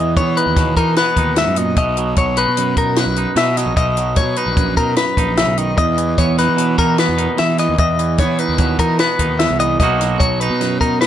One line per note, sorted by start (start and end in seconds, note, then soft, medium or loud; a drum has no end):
0.00 0.19 E2 medium
0.00 1.37 E2 medium
0.00 1.77 E3 medium
0.00 0.17 B3 medium
0.00 0.16 D#5 medium
0.17 0.35 E3 medium
0.17 0.98 B3 medium
0.17 0.37 C#5 medium
0.17 kick loud
0.17 closed hi-hat medium
0.37 0.77 D#4 medium
0.37 0.77 B4 medium
0.37 closed hi-hat medium
0.46 0.73 D#2 medium
0.57 1.76 B2 medium
0.57 kick loud
0.57 snare soft
0.57 closed hi-hat medium
0.77 0.95 E3 medium
0.77 1.18 D#4 medium
0.77 0.97 A#4 medium
0.77 kick medium
0.77 closed hi-hat medium
0.96 4.48 B3 medium
0.96 1.37 B4 medium
0.96 snare medium
0.96 closed hi-hat medium
1.17 1.44 D#2 medium
1.17 2.38 D#4 medium
1.17 kick medium
1.17 closed hi-hat medium
1.36 1.57 G#2 medium
1.36 1.57 E5 medium
1.36 snare loud
1.36 closed hi-hat medium
1.47 1.74 F#2 medium
1.56 1.77 A#2 medium
1.56 1.77 D#5 medium
1.56 closed hi-hat medium
1.76 2.13 B1 medium
1.76 2.57 B2 medium
1.76 2.17 D#5 medium
1.76 kick loud
1.76 closed hi-hat medium
1.97 3.56 F#3 medium
1.97 closed hi-hat medium
2.16 2.44 B1 medium
2.16 2.37 C#5 medium
2.16 kick loud
2.16 closed hi-hat medium
2.37 2.77 D#4 medium
2.37 2.77 B4 medium
2.37 closed hi-hat medium
2.48 2.74 B2 medium
2.57 3.37 F#2 medium
2.57 closed hi-hat medium
2.77 3.04 B2 medium
2.77 3.17 D#4 medium
2.77 2.97 A#4 medium
2.77 kick medium
2.77 closed hi-hat medium
2.96 3.37 B4 medium
2.96 snare loud
2.96 closed hi-hat medium
3.06 3.25 B1 medium
3.16 4.37 D#4 medium
3.16 closed hi-hat medium
3.36 3.63 B2 medium
3.36 3.75 B2 medium
3.36 3.57 E5 medium
3.36 snare loud
3.36 closed hi-hat medium
3.57 3.74 F#3 medium
3.57 3.76 D#5 medium
3.57 snare soft
3.57 closed hi-hat medium
3.66 3.75 A#1 medium
3.76 4.18 B1 medium
3.76 4.57 B2 medium
3.76 4.17 D#5 medium
3.76 kick loud
3.76 closed hi-hat medium
3.97 5.76 F#3 medium
3.97 closed hi-hat medium
4.16 4.35 B2 medium
4.16 4.37 C#5 medium
4.16 kick loud
4.16 closed hi-hat medium
4.36 4.78 D#4 medium
4.36 4.77 B4 medium
4.36 closed hi-hat medium
4.46 4.74 A#1 medium
4.56 5.75 F#2 medium
4.56 kick loud
4.56 closed hi-hat medium
4.77 4.95 B2 medium
4.77 5.18 D#4 medium
4.77 4.97 A#4 medium
4.77 kick medium
4.77 closed hi-hat medium
4.96 5.37 B4 medium
4.96 snare loud
4.96 closed hi-hat medium
5.17 5.44 A#1 medium
5.17 5.81 D#4 medium
5.17 kick medium
5.17 closed hi-hat medium
5.37 5.58 C#3 medium
5.37 5.58 E5 medium
5.37 snare loud
5.37 closed hi-hat medium
5.47 5.74 B1 medium
5.57 5.78 D#3 medium
5.57 5.77 D#5 medium
5.57 closed hi-hat medium
5.78 6.14 E2 medium
5.78 7.35 E2 medium
5.78 6.18 D#5 medium
5.78 kick loud
5.78 closed hi-hat medium
5.98 7.58 E3 medium
5.98 closed hi-hat medium
6.18 6.45 E2 medium
6.18 6.98 B3 soft
6.18 6.38 C#5 medium
6.18 kick loud
6.18 closed hi-hat medium
6.38 6.78 D#4 medium
6.38 6.78 B4 medium
6.38 snare soft
6.38 closed hi-hat medium
6.49 6.76 E3 medium
6.56 7.58 B2 medium
6.56 closed hi-hat medium
6.78 7.06 E3 medium
6.78 7.17 D#4 medium
6.78 6.98 A#4 medium
6.78 kick medium
6.78 snare soft
6.78 closed hi-hat medium
6.98 8.19 B3 medium
6.98 7.39 B4 medium
6.98 snare loud
6.98 closed hi-hat medium
7.09 7.27 E2 medium
7.18 7.81 D#4 medium
7.18 closed hi-hat medium
7.36 7.77 E2 medium
7.36 7.66 E3 medium
7.36 7.59 E5 medium
7.36 snare medium
7.36 closed hi-hat medium
7.58 7.98 E3 medium
7.58 7.78 D#5 medium
7.58 snare soft
7.58 closed hi-hat medium
7.69 7.78 D#2 medium
7.78 9.39 E2 medium
7.78 8.20 E2 medium
7.78 8.19 D#5 medium
7.78 kick loud
7.78 closed hi-hat medium
7.99 9.59 E3 medium
7.99 closed hi-hat medium
8.18 8.37 E3 medium
8.18 8.99 B3 medium
8.18 8.39 C#5 medium
8.18 kick loud
8.18 closed hi-hat medium
8.38 8.80 D#4 medium
8.38 8.79 B4 medium
8.38 closed hi-hat medium
8.49 8.76 D#2 medium
8.58 9.60 B2 medium
8.58 kick loud
8.58 closed hi-hat medium
8.79 8.97 E3 medium
8.79 9.19 D#4 medium
8.79 8.99 A#4 medium
8.79 kick medium
8.79 closed hi-hat medium
8.99 9.82 B3 medium
8.99 9.40 B4 medium
8.99 snare loud
8.99 closed hi-hat medium
9.19 9.47 D#2 medium
9.19 9.82 D#4 medium
9.19 kick medium
9.19 closed hi-hat medium
9.39 9.80 E2 medium
9.39 9.59 E5 medium
9.39 snare loud
9.39 closed hi-hat medium
9.50 9.77 C2 medium
9.60 9.80 E3 medium
9.60 9.79 D#5 medium
9.60 closed hi-hat medium
9.79 10.16 B1 medium
9.79 10.61 B2 medium
9.79 10.00 F#3 medium
9.79 10.21 A#3 medium
9.79 10.42 D#4 medium
9.79 10.20 D#5 medium
9.79 kick loud
9.79 closed hi-hat medium
9.84 11.07 F#4 medium
10.01 11.07 F#3 medium
10.01 snare soft
10.01 closed hi-hat medium
10.19 10.48 B1 medium
10.19 10.40 C#5 medium
10.19 kick loud
10.19 closed hi-hat medium
10.40 10.80 D#4 medium
10.40 10.80 B4 medium
10.40 closed hi-hat medium
10.50 10.78 B2 medium
10.61 11.07 F#2 medium
10.61 snare soft
10.61 closed hi-hat medium
10.81 11.07 B2 medium
10.81 11.07 D#4 medium
10.81 11.01 A#4 medium
10.81 kick medium
10.81 closed hi-hat medium
11.01 11.07 B4 medium
11.01 snare loud
11.01 closed hi-hat medium